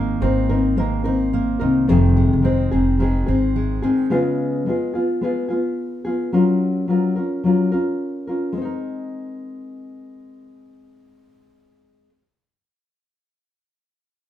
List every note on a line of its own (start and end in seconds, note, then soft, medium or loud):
0.00 0.18 G#1 medium
0.00 0.49 D#3 medium
0.00 0.20 G#3 medium
0.00 0.76 A#3 medium
0.00 0.22 C4 medium
0.00 0.22 D#4 medium
0.00 0.23 D#4 medium
0.00 0.22 A#4 medium
0.21 1.57 G#1 medium
0.21 0.49 G#3 medium
0.21 1.05 C4 medium
0.21 0.50 C4 medium
0.21 0.50 D#4 medium
0.21 0.48 A#4 medium
0.49 1.60 D#3 medium
0.49 0.76 C4 soft
0.49 0.77 D#4 medium
0.49 0.77 A#4 medium
0.77 1.05 G#3 medium
0.77 1.32 A#3 medium
0.77 1.05 C4 medium
0.77 1.04 D#4 medium
0.77 1.03 A#4 medium
1.04 2.44 C4 medium
1.04 1.62 C4 soft
1.04 1.61 D#4 soft
1.04 1.58 A#4 medium
1.33 1.96 A#3 medium
1.60 1.87 C2 medium
1.60 1.89 D#3 soft
1.60 1.89 C4 soft
1.60 1.89 D#4 medium
1.60 1.88 A#4 medium
1.88 2.30 F1 medium
1.88 2.44 F2 medium
1.88 2.44 C3 medium
1.88 2.41 D#3 medium
1.88 2.71 D#3 medium
1.88 2.44 G#3 medium
1.88 2.44 C4 medium
1.88 2.46 G#4 medium
2.17 3.00 G#3 soft
2.33 2.69 F1 medium
2.42 2.71 D#3 medium
2.42 2.72 G#3 soft
2.42 3.27 C4 medium
2.42 2.71 C4 medium
2.42 2.70 G#4 medium
2.71 3.24 F1 medium
2.71 3.82 D#3 soft
2.71 2.98 D#3 soft
2.71 2.99 G#3 soft
2.71 3.00 C4 soft
2.71 3.00 G#4 soft
2.99 3.27 D#3 medium
2.99 3.28 G#3 medium
2.99 3.55 G#3 medium
2.99 3.27 C4 medium
2.99 3.25 G#4 medium
3.26 3.80 G#1 medium
3.26 3.84 D#3 soft
3.26 3.84 G#3 soft
3.26 3.82 C4 soft
3.26 4.18 C4 medium
3.26 3.82 G#4 soft
3.56 4.68 G#3 soft
3.82 4.18 D#3 medium
3.82 4.10 D#3 soft
3.82 4.09 G#3 soft
3.82 4.11 C4 soft
3.82 4.11 G#4 medium
4.10 4.66 C#3 medium
4.10 4.65 G#3 medium
4.10 4.66 B3 medium
4.10 4.68 F4 medium
4.10 4.67 G#4 medium
4.66 4.94 G#3 medium
4.66 4.95 B3 medium
4.66 4.94 F4 medium
4.66 4.92 G#4 medium
4.94 5.21 B3 soft
4.94 5.22 F4 soft
4.94 5.22 G#4 soft
5.21 5.50 G#3 medium
5.21 5.50 B3 medium
5.21 5.49 F4 medium
5.21 5.47 G#4 medium
5.48 6.06 B3 soft
5.48 6.06 F4 soft
5.48 6.03 G#4 soft
6.05 6.33 B3 soft
6.05 6.33 F4 soft
6.05 6.33 G#4 medium
6.32 6.86 F#3 medium
6.32 6.87 C#4 medium
6.32 6.88 F4 medium
6.32 6.90 A#4 medium
6.88 7.16 F#3 medium
6.88 7.17 C#4 soft
6.88 7.16 F4 soft
6.88 7.14 A#4 medium
7.16 7.44 C#4 soft
7.16 7.45 F4 soft
7.16 7.44 A#4 soft
7.44 7.72 F#3 medium
7.44 7.73 C#4 medium
7.44 7.72 F4 medium
7.44 7.71 A#4 medium
7.72 8.29 C#4 soft
7.72 8.28 F4 soft
7.72 8.27 A#4 medium
8.27 8.57 C#4 soft
8.27 8.56 F4 soft
8.27 8.56 A#4 soft
8.53 12.09 G#3 medium
8.57 12.14 C4 medium
8.62 12.18 D#4 medium
8.62 12.22 A#4 medium